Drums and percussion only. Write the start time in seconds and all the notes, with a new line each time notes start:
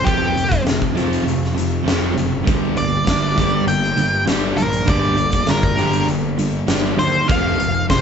0.07 kick, closed hi-hat
0.37 closed hi-hat
0.52 kick, closed hi-hat
0.67 snare, closed hi-hat
0.82 kick
0.97 closed hi-hat
1.13 closed hi-hat
1.28 closed hi-hat
1.44 snare
1.58 closed hi-hat
1.88 snare, closed hi-hat
2.18 closed hi-hat
2.47 kick, closed hi-hat
2.77 closed hi-hat
3.07 kick, snare, closed hi-hat
3.38 kick, closed hi-hat
3.68 closed hi-hat
3.82 snare
3.97 closed hi-hat
4.28 snare, closed hi-hat
4.58 closed hi-hat
4.73 closed hi-hat
4.87 kick, closed hi-hat
5.17 closed hi-hat
5.32 kick, closed hi-hat
5.47 snare, closed hi-hat
5.63 kick
5.78 closed hi-hat
5.93 closed hi-hat
6.08 closed hi-hat
6.39 closed hi-hat
6.68 snare, closed hi-hat
6.99 closed hi-hat
7.29 kick, closed hi-hat
7.60 closed hi-hat
7.90 kick, snare, closed hi-hat